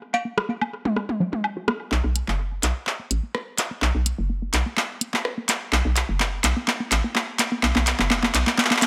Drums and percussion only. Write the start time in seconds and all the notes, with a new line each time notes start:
0.14 cowbell
0.38 cross-stick
0.61 high woodblock
0.85 high tom
0.96 cross-stick
1.09 high tom
1.33 high tom
1.44 high woodblock
1.68 cross-stick
1.92 clap
2.16 closed hi-hat
2.28 clap
2.63 clap, closed hi-hat
2.87 clap
3.11 closed hi-hat
3.35 cross-stick
3.58 clap, closed hi-hat
3.82 clap
4.06 closed hi-hat
4.54 clap, closed hi-hat
4.77 clap
5.01 closed hi-hat
5.14 clap
5.25 cross-stick
5.49 clap, closed hi-hat
5.73 clap
5.96 clap, closed hi-hat
6.20 clap
6.44 clap, closed hi-hat
6.68 clap
6.92 clap, closed hi-hat
7.16 clap
7.39 clap, closed hi-hat
7.63 clap
7.76 clap
7.87 clap, closed hi-hat
8.00 clap
8.11 clap
8.23 clap
8.35 clap, closed hi-hat
8.47 clap
8.58 clap
8.65 clap
8.71 clap
8.77 clap
8.82 clap, closed hi-hat